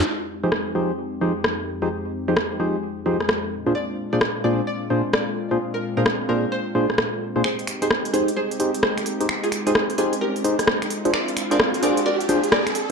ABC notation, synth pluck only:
X:1
M:4/4
L:1/16
Q:"Swing 16ths" 1/4=130
K:Fdor
V:1 name="Synth pluck"
z16 | z16 | d2 z d2 z d z d2 z2 d z3 | z B z B2 z B z c2 z6 |
[Ac]2 z [Ac]2 z [Ac] z [Ac]2 z2 [Ac] z3 | z [FA] z [FA]2 z [FA] z [GB]2 z6 | [Bd]2 z [Bd]2 z [Bd] z [Bd]2 z2 [Bd] z3 |]